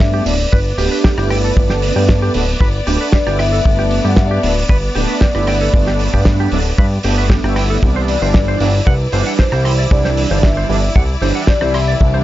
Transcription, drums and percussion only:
0.00 kick, snare
0.26 open hi-hat
0.53 kick
0.79 open hi-hat
1.04 kick, snare
1.18 cross-stick
1.30 cross-stick, open hi-hat
1.57 kick
1.70 snare
1.82 open hi-hat
2.09 kick, snare
2.34 open hi-hat
2.61 kick
2.87 open hi-hat
3.12 kick, snare
3.27 cross-stick
3.39 cross-stick, open hi-hat
3.65 kick
3.91 open hi-hat
4.17 kick, snare
4.43 open hi-hat
4.69 kick
4.95 open hi-hat
5.21 kick, snare
5.35 cross-stick
5.47 cross-stick, open hi-hat
5.74 kick
5.87 snare
5.99 open hi-hat
6.14 kick
6.25 kick, snare
6.52 open hi-hat
6.78 kick
7.03 open hi-hat
7.30 kick, snare
7.44 cross-stick
7.56 cross-stick, open hi-hat
7.83 kick
8.08 open hi-hat
8.34 kick, snare
8.60 open hi-hat
8.87 kick
9.12 open hi-hat
9.39 kick, snare
9.52 cross-stick
9.65 cross-stick, open hi-hat
9.91 kick
10.05 snare
10.17 open hi-hat
10.43 kick, snare
10.70 open hi-hat
10.96 kick
11.22 open hi-hat
11.47 kick, snare
11.61 cross-stick
11.74 cross-stick, open hi-hat
12.01 kick

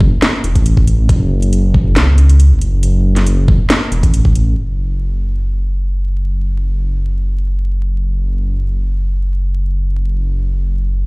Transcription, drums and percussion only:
0.00 kick
0.22 snare, closed hi-hat
0.44 closed hi-hat
0.55 kick, closed hi-hat
0.66 closed hi-hat
0.77 kick
0.87 closed hi-hat
1.09 kick, closed hi-hat
1.42 closed hi-hat
1.53 closed hi-hat
1.74 kick
1.96 snare, closed hi-hat
2.18 closed hi-hat
2.29 closed hi-hat
2.40 closed hi-hat
2.61 closed hi-hat
2.83 closed hi-hat
3.16 snare, closed hi-hat
3.27 closed hi-hat
3.48 kick
3.70 snare, closed hi-hat
3.92 closed hi-hat
4.03 kick, closed hi-hat
4.14 closed hi-hat
4.25 kick
4.35 closed hi-hat

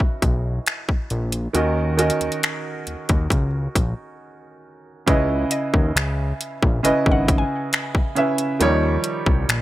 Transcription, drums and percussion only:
0.00 kick
0.22 kick, closed hi-hat
0.66 finger snap, closed hi-hat
0.89 kick
1.10 closed hi-hat
1.32 closed hi-hat
1.55 closed hi-hat
1.99 closed hi-hat
2.10 closed hi-hat
2.21 closed hi-hat
2.32 closed hi-hat
2.43 finger snap, closed hi-hat
2.87 closed hi-hat
3.09 kick, closed hi-hat
3.30 kick, closed hi-hat
3.75 kick, closed hi-hat
5.08 kick, closed hi-hat
5.51 closed hi-hat
5.74 kick
5.97 finger snap, closed hi-hat
6.41 closed hi-hat
6.63 kick
6.85 closed hi-hat
7.06 kick
7.28 kick, closed hi-hat
7.73 finger snap, closed hi-hat
7.95 kick
8.16 closed hi-hat
8.38 closed hi-hat
8.61 closed hi-hat
9.04 closed hi-hat
9.26 kick
9.49 finger snap, closed hi-hat

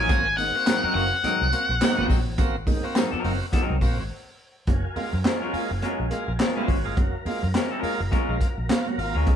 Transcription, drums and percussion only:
0.09 kick, closed hi-hat, tambourine, muted conga
0.38 open hi-hat, tambourine, muted conga
0.66 snare, clap, closed hi-hat, tambourine, high conga
0.96 open hi-hat
1.24 closed hi-hat, tambourine, muted conga
1.52 closed hi-hat, tambourine, muted conga
1.81 snare, clap, closed hi-hat, tambourine, high conga
1.99 high conga
2.10 kick, open hi-hat, tambourine
2.38 kick, closed hi-hat, tambourine, muted conga
2.67 kick, open hi-hat, tambourine, muted conga
2.95 snare, clap, closed hi-hat, tambourine, high conga
3.24 open hi-hat
3.53 kick, closed hi-hat, muted conga
3.81 kick, open hi-hat, tambourine
4.67 kick, closed hi-hat, muted conga
4.96 open hi-hat, muted conga
5.24 snare, clap, closed hi-hat, high conga
5.54 open hi-hat
5.82 closed hi-hat, muted conga
6.11 closed hi-hat, muted conga
6.39 snare, clap, closed hi-hat, high conga
6.57 high conga
6.68 kick, open hi-hat
6.97 kick, closed hi-hat, muted conga
7.26 open hi-hat, muted conga
7.54 snare, clap, closed hi-hat, high conga
7.83 open hi-hat
8.12 kick, closed hi-hat, muted conga
8.41 kick, closed hi-hat
8.69 snare, clap, closed hi-hat, high conga
8.87 high conga
8.99 open hi-hat
9.26 kick, closed hi-hat, muted conga

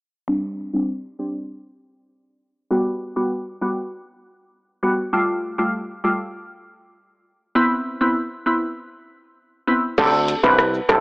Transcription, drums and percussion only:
9.98 kick, crash, shaker
10.13 shaker
10.28 closed hi-hat, shaker
10.43 kick, shaker
10.59 cross-stick, shaker
10.74 shaker
10.89 kick, cross-stick, closed hi-hat, shaker

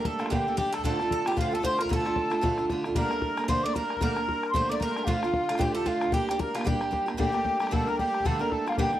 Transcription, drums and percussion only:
0.05 bodhran
0.20 bodhran
0.26 bodhran
0.32 bodhran
0.58 bodhran
0.74 bodhran
0.79 bodhran
0.84 bodhran
1.00 bodhran
1.11 bodhran
1.26 bodhran
1.32 bodhran
1.37 bodhran
1.64 bodhran
1.79 bodhran
1.85 bodhran
1.91 bodhran
2.06 bodhran
2.16 bodhran
2.32 bodhran
2.44 bodhran
2.58 bodhran
2.70 bodhran
2.84 bodhran
2.90 bodhran
2.95 bodhran
3.11 bodhran
3.22 bodhran
3.38 bodhran
3.44 bodhran
3.49 bodhran
3.76 bodhran
3.90 bodhran
3.96 bodhran
4.01 bodhran
4.17 bodhran
4.29 bodhran
4.43 bodhran
4.54 bodhran
4.81 bodhran
4.96 bodhran
5.07 bodhran
5.23 bodhran
5.34 bodhran
5.49 bodhran
5.55 bodhran
5.60 bodhran
5.86 bodhran
6.01 bodhran
6.08 bodhran
6.12 bodhran
6.29 bodhran
6.40 bodhran
6.55 bodhran
6.61 bodhran
6.67 bodhran
6.81 bodhran
6.93 bodhran
7.08 bodhran
7.14 bodhran
7.20 bodhran
7.34 bodhran
7.45 bodhran
7.60 bodhran
7.67 bodhran
7.73 bodhran
7.99 bodhran
8.14 bodhran
8.20 bodhran
8.26 bodhran
8.41 bodhran
8.52 bodhran
8.68 bodhran
8.72 bodhran
8.78 bodhran

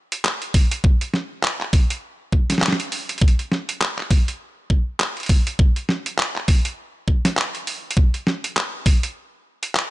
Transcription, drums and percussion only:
0.12 closed hi-hat
0.25 clap
0.42 closed hi-hat
0.54 kick, open hi-hat
0.71 closed hi-hat
0.84 kick
1.01 closed hi-hat
1.14 snare
1.43 clap
1.61 clap
1.73 kick, open hi-hat
1.90 closed hi-hat
2.32 kick
2.50 snare, closed hi-hat
2.52 snare
2.58 snare
2.62 clap, snare
2.68 snare
2.72 snare
2.80 closed hi-hat
2.92 open hi-hat
3.09 closed hi-hat
3.18 kick, closed hi-hat
3.28 closed hi-hat
3.39 closed hi-hat
3.52 snare
3.69 closed hi-hat
3.81 clap
3.99 clap
4.11 kick, open hi-hat
4.28 closed hi-hat
4.70 kick
5.00 clap
5.17 closed hi-hat
5.20 closed hi-hat
5.23 closed hi-hat
5.26 kick, closed hi-hat, open hi-hat
5.47 closed hi-hat
5.59 kick
5.76 closed hi-hat
5.89 snare
6.06 closed hi-hat
6.18 clap
6.36 clap
6.48 kick, open hi-hat
6.65 closed hi-hat
7.08 kick
7.25 snare, closed hi-hat
7.37 clap
7.55 closed hi-hat
7.67 open hi-hat
7.91 closed hi-hat
7.97 kick
8.14 closed hi-hat
8.27 snare
8.44 closed hi-hat
8.56 clap
8.86 kick, open hi-hat
9.03 closed hi-hat
9.63 closed hi-hat
9.75 clap

